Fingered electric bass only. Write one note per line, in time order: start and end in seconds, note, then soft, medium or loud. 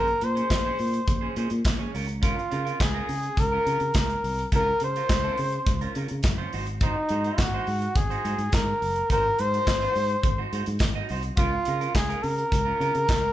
0.00 0.13 A#1 loud
0.22 0.41 A#2 medium
0.51 0.70 A#1 loud
0.80 0.99 A#2 medium
1.08 1.28 A#1 loud
1.37 1.46 A#2 medium
1.51 1.61 A#2 loud
1.65 1.85 A#1 loud
1.95 2.33 C#2 loud
2.52 2.71 C#3 medium
2.81 3.00 C#2 loud
3.09 3.28 C#3 medium
3.38 3.57 C#2 loud
3.66 3.76 C#3 medium
3.81 3.90 C#3 medium
3.95 4.15 C#2 loud
4.24 4.43 C2 medium
4.52 4.72 C#2 loud
4.82 5.01 C#3 medium
5.10 5.29 C#2 loud
5.39 5.58 C#3 loud
5.67 5.86 C#2 loud
5.96 6.05 C#3 medium
6.11 6.20 C#3 medium
6.24 6.44 F#1 medium
6.54 6.92 G#1 medium
7.10 7.29 G#2 medium
7.38 7.58 G#1 medium
7.67 7.87 G#2 loud
7.96 8.15 G#1 loud
8.25 8.34 G#2 loud
8.38 8.48 G#2 medium
8.53 8.72 G#2 medium
8.82 9.01 F#1 medium
9.10 9.29 G#1 loud
9.40 9.58 G#2 medium
9.67 9.86 G#1 loud
9.96 10.15 G#2 medium
10.24 10.43 G#1 medium
10.53 10.62 G#2 medium
10.68 10.77 G#2 loud
10.81 11.00 G#1 medium
11.10 11.29 C2 medium
11.38 11.57 C#2 loud
11.68 11.86 C#3 medium
11.95 12.14 C#2 loud
12.24 12.43 C#3 loud
12.52 12.71 C#2 loud
12.80 12.90 C#3 loud
12.95 13.05 C#3 loud
13.09 13.28 C#2 medium